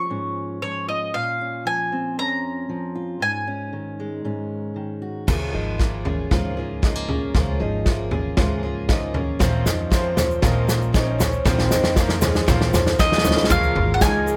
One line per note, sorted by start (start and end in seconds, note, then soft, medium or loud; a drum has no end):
0.00 0.61 F3 soft
0.00 1.11 A#3 soft
0.00 0.10 C#4 soft
0.00 0.88 F4 soft
0.00 0.64 C#6 medium
0.10 1.11 G#2 soft
0.10 1.41 C#4 soft
0.62 1.11 F3 soft
0.62 0.88 C#5 medium
0.89 2.94 F4 soft
0.89 1.15 D#5 medium
1.14 2.18 A#2 soft
1.14 1.66 F5 medium
1.41 2.18 C#4 soft
1.65 2.68 F3 soft
1.65 2.19 G#5 medium
1.92 3.19 C4 soft
2.18 3.20 F2 soft
2.18 3.47 C#4 soft
2.18 3.22 A#5 medium
2.69 3.18 F3 soft
2.95 3.21 F4 soft
3.20 4.23 G#2 soft
3.20 4.73 G#5 medium
3.47 4.24 C#4 soft
3.73 4.75 D#3 soft
4.00 5.79 G#3 soft
4.25 5.25 G#2 soft
4.25 5.26 C#4 soft
4.76 5.28 D#3 soft
5.02 5.25 F#4 soft
5.27 5.51 C#2 medium
5.27 5.54 C#3 medium
5.27 5.54 F3 medium
5.27 5.54 A#3 medium
5.27 5.52 F4 medium
5.27 5.51 G#4 medium
5.27 kick medium
5.27 snare soft
5.27 floor tom medium
5.27 crash medium
5.53 6.23 G#1 medium
5.53 7.59 F3 soft
5.53 5.78 A#3 soft
5.53 5.79 D#4 medium
5.53 5.79 F4 soft
5.53 5.79 G#4 soft
5.78 6.05 F3 soft
5.78 6.06 A#3 soft
5.78 6.82 A#3 soft
5.78 6.30 F4 medium
5.78 6.06 F4 medium
5.78 6.04 G#4 medium
5.78 kick medium
5.78 snare soft
6.05 6.31 A#3 soft
6.05 6.56 C#4 medium
6.05 6.31 F4 soft
6.05 6.31 G#4 soft
6.05 floor tom medium
6.31 7.23 C#2 medium
6.31 7.32 G#2 medium
6.31 6.57 C#3 medium
6.31 6.57 F3 medium
6.31 6.58 A#3 medium
6.31 6.82 F4 medium
6.31 6.57 F4 medium
6.31 6.56 G#4 medium
6.31 kick medium
6.31 snare soft
6.31 floor tom medium
6.57 6.82 A#3 soft
6.57 7.09 C#4 soft
6.57 6.83 F4 soft
6.57 6.83 G#4 soft
6.82 7.09 F3 medium
6.82 6.96 G#3 medium
6.82 7.09 A#3 medium
6.82 7.09 D#4 medium
6.82 7.09 F4 medium
6.82 7.08 G#4 medium
6.82 kick loud
6.82 snare medium
6.96 7.35 A#3 soft
7.09 7.34 A#3 soft
7.09 8.13 C#4 soft
7.09 7.35 C#4 medium
7.09 7.35 F4 soft
7.09 7.35 G#4 medium
7.09 floor tom medium
7.34 7.58 C#2 medium
7.34 7.61 C#3 medium
7.34 7.61 F3 medium
7.34 7.61 A#3 medium
7.34 7.61 F4 medium
7.34 7.59 G#4 medium
7.34 kick medium
7.34 snare medium
7.34 floor tom medium
7.60 8.30 G#1 medium
7.60 9.37 F3 medium
7.60 7.85 A#3 soft
7.60 7.86 D#4 medium
7.60 7.86 F4 soft
7.60 7.86 G#4 medium
7.86 8.12 F3 medium
7.86 8.12 A#3 medium
7.86 8.88 A#3 medium
7.86 8.36 F4 medium
7.86 8.12 F4 medium
7.86 8.10 G#4 medium
7.86 kick medium
7.86 snare medium
8.11 8.38 A#3 soft
8.11 8.62 C#4 medium
8.11 8.38 F4 medium
8.11 8.38 G#4 soft
8.11 floor tom medium
8.37 9.30 C#2 medium
8.37 9.38 G#2 medium
8.37 8.64 C#3 medium
8.37 8.64 F3 medium
8.37 8.64 A#3 medium
8.37 8.88 F4 medium
8.37 8.63 F4 medium
8.37 8.62 G#4 medium
8.37 kick loud
8.37 snare medium
8.37 floor tom medium
8.63 8.88 A#3 soft
8.63 9.15 C#4 medium
8.63 8.89 F4 soft
8.63 8.89 G#4 medium
8.88 9.15 F3 medium
8.88 9.38 A#3 soft
8.88 9.15 A#3 medium
8.88 9.14 D#4 medium
8.88 9.14 F4 medium
8.88 9.13 G#4 medium
8.88 kick loud
8.88 snare medium
9.14 9.40 A#3 soft
9.14 9.40 C#4 medium
9.14 9.38 C#4 medium
9.14 9.40 F4 soft
9.14 9.40 G#4 medium
9.14 floor tom medium
9.39 9.63 A#1 medium
9.39 11.42 A#1 medium
9.39 9.66 A#2 medium
9.39 11.42 A#2 medium
9.39 9.87 F3 medium
9.39 9.66 F3 medium
9.39 10.44 F3 medium
9.39 9.65 C4 medium
9.39 9.87 C#4 medium
9.39 9.66 C#4 medium
9.39 9.64 F4 loud
9.39 9.87 A#4 medium
9.39 9.88 C5 medium
9.39 kick loud
9.39 snare medium
9.39 floor tom loud
9.39 shaker medium
9.65 10.35 F2 medium
9.65 9.91 C4 medium
9.65 9.90 C#4 soft
9.65 9.91 D#4 medium
9.65 9.92 F4 soft
9.65 snare medium
9.65 shaker medium
9.90 10.17 F3 medium
9.90 10.38 F3 medium
9.90 10.17 C4 medium
9.90 10.17 C#4 medium
9.90 10.39 C#4 medium
9.90 10.41 F4 medium
9.90 10.15 F4 medium
9.90 10.39 A#4 medium
9.90 10.39 C5 medium
9.90 kick loud
9.90 snare medium
9.90 shaker medium
10.16 10.42 C4 soft
10.16 10.42 C#4 soft
10.16 10.43 F4 medium
10.16 snare medium
10.16 floor tom medium
10.16 shaker medium
10.31 shaker soft
10.42 11.34 A#1 loud
10.42 10.69 A#2 loud
10.42 10.69 F3 medium
10.42 10.90 F3 medium
10.42 10.95 A#3 loud
10.42 10.68 C4 loud
10.42 10.69 C#4 loud
10.42 10.90 C#4 medium
10.42 10.93 F4 medium
10.42 10.66 F4 loud
10.42 10.90 A#4 medium
10.42 10.90 D#5 medium
10.42 kick loud
10.42 snare medium
10.42 floor tom loud
10.42 shaker medium
10.67 10.93 C4 medium
10.67 10.93 C#4 medium
10.67 10.94 F4 medium
10.67 snare medium
10.67 shaker medium
10.82 shaker soft
10.93 11.19 F3 medium
10.93 11.41 F3 medium
10.93 11.19 C4 medium
10.93 11.20 C#4 medium
10.93 11.41 C#4 medium
10.93 11.47 C#4 medium
10.93 11.19 D#4 medium
10.93 11.17 F4 medium
10.93 11.42 A#4 medium
10.93 11.42 C#5 medium
10.93 kick loud
10.93 snare medium
10.93 shaker medium
11.18 11.45 C4 medium
11.18 11.45 C#4 medium
11.18 11.44 C#4 soft
11.18 11.45 F4 medium
11.18 snare medium
11.18 floor tom medium
11.18 shaker loud
11.33 shaker soft
11.45 11.69 A#1 medium
11.45 13.46 A#1 medium
11.45 11.71 A#2 medium
11.45 13.46 A#2 medium
11.45 11.92 C#3 medium
11.45 11.92 F3 medium
11.45 11.71 F3 medium
11.45 11.98 C4 loud
11.45 11.70 C4 loud
11.45 11.71 C#4 medium
11.45 11.69 F4 loud
11.45 11.93 A#4 medium
11.45 11.93 C5 loud
11.45 kick loud
11.45 snare medium
11.45 floor tom loud
11.45 shaker medium
11.59 snare loud
11.70 12.40 F2 medium
11.70 11.96 C4 medium
11.70 11.95 C#4 soft
11.70 11.96 D#4 medium
11.70 11.96 F4 medium
11.70 snare loud
11.70 shaker loud
11.84 snare loud
11.84 shaker soft
11.95 12.22 F3 medium
11.95 12.43 F3 medium
11.95 12.22 A#3 loud
11.95 12.21 C4 medium
11.95 12.22 C#4 medium
11.95 12.44 C#4 medium
11.95 12.46 F4 medium
11.95 12.20 F4 medium
11.95 12.44 A#4 medium
11.95 12.44 C5 medium
11.95 kick loud
11.95 snare loud
11.95 shaker medium
12.09 snare medium
12.21 12.49 G#3 medium
12.21 12.47 C4 medium
12.21 12.47 C#4 medium
12.21 12.47 F4 medium
12.21 snare loud
12.21 floor tom medium
12.21 shaker loud
12.35 snare loud
12.35 shaker soft
12.47 12.71 A#1 loud
12.47 12.73 A#2 loud
12.47 12.73 F3 loud
12.47 13.01 F3 loud
12.47 12.94 F3 medium
12.47 12.73 C4 loud
12.47 12.74 C#4 loud
12.47 12.94 C#4 medium
12.47 12.98 F4 medium
12.47 12.71 F4 loud
12.47 12.95 A#4 medium
12.47 12.95 C5 loud
12.47 kick loud
12.47 snare loud
12.47 floor tom loud
12.47 shaker medium
12.61 snare loud
12.72 12.97 F2 medium
12.72 12.99 C4 medium
12.72 12.98 C#4 medium
12.72 12.99 F4 medium
12.72 snare loud
12.72 floor tom medium
12.72 shaker medium
12.87 snare loud
12.87 shaker soft
12.98 13.22 D#2 medium
12.98 13.25 D#3 medium
12.98 13.24 F3 medium
12.98 13.46 F3 medium
12.98 13.23 C4 medium
12.98 13.25 C#4 medium
12.98 13.46 C#4 medium
12.98 13.24 D#4 medium
12.98 13.22 F4 medium
12.98 13.46 A#4 medium
12.98 13.47 C5 loud
12.98 13.47 D#5 loud
12.98 kick loud
12.98 snare loud
12.98 shaker medium
13.12 snare loud
13.18 snare loud
13.23 13.48 C#2 medium
13.23 13.49 F3 medium
13.23 13.50 C4 medium
13.23 13.50 C#4 medium
13.23 13.49 F4 medium
13.23 snare loud
13.23 floor tom medium
13.23 shaker loud
13.31 snare loud
13.37 snare loud
13.37 shaker soft
13.44 snare loud
13.49 13.77 C#2 loud
13.49 14.37 C#2 medium
13.49 13.75 C#3 medium
13.49 14.37 C#3 medium
13.49 13.76 F3 medium
13.49 13.97 F3 medium
13.49 13.76 G#3 loud
13.49 14.37 A#3 medium
13.49 13.97 A#3 medium
13.49 13.97 C#4 medium
13.49 14.00 F4 medium
13.49 14.37 F4 medium
13.49 13.75 F4 loud
13.49 14.37 G#4 loud
13.49 13.98 G#4 medium
13.49 13.74 A#4 medium
13.49 13.98 C#5 medium
13.49 13.94 F5 loud
13.49 kick loud
13.49 floor tom loud
13.49 shaker loud
13.63 shaker soft
13.75 13.98 G#1 loud
13.75 14.00 G#3 soft
13.75 14.01 F4 soft
13.75 14.01 A#4 medium
13.75 floor tom medium
13.94 14.01 F#5 medium
14.00 14.37 C#2 loud
14.00 14.26 F3 medium
14.00 14.37 F3 medium
14.00 14.27 G#3 medium
14.00 14.37 A#3 medium
14.00 14.37 C#4 medium
14.00 14.37 D#4 medium
14.00 14.27 F4 medium
14.00 14.37 G#4 medium
14.00 14.37 A#4 medium
14.00 14.25 A#4 medium
14.00 14.37 G#5 loud
14.00 kick loud
14.00 snare loud
14.00 shaker medium
14.26 14.37 G#3 medium
14.26 14.37 F4 soft
14.26 14.37 A#4 medium
14.26 shaker medium